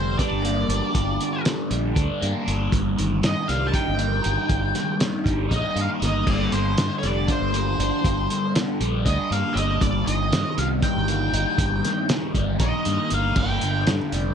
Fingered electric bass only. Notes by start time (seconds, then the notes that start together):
Already playing: F1
0.31 G1
0.68 G1
0.95 G1
1.71 A#1
1.96 D2
2.22 G2
2.48 G1
2.73 G1
2.99 G1
3.23 G2
3.49 C2
3.88 G1
4.26 G1
4.50 G1
5.25 G1
5.51 A#1
5.75 G2
6.02 G1
6.27 G1
6.52 G1
6.78 G2
7.03 F1
7.40 G1
7.79 G1
8.04 G1
8.80 A#1
9.06 D2
9.31 G2
9.55 G1
9.81 G1
10.07 G1
10.32 G2
10.58 C2
10.96 G1
11.33 G1
11.58 G1
12.34 G1
12.60 A#1
12.86 G2
13.11 G1
13.36 G1
13.62 G1
13.88 G2
14.12 F1